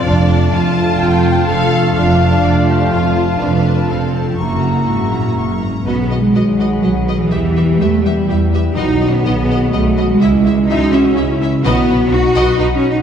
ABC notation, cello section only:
X:1
M:3/4
L:1/16
Q:1/4=125
K:Ddor
V:1 name="Cello section" clef=bass
F,,4 F,,4 F,,4 | F,,4 F,,4 F,,4 | F,,4 F,,4 F,,4 | ^F,,4 _A,,2 ^A,,2 F,,2 _A,,2 |
[K:B] B,3 G,4- G, F,3 E,- | E,4 =A,2 =G,4 z2 | D3 B,4- B, =A,3 G,- | G,4 D2 C4 z2 |
B,4 F4 (3D2 C2 D2 |]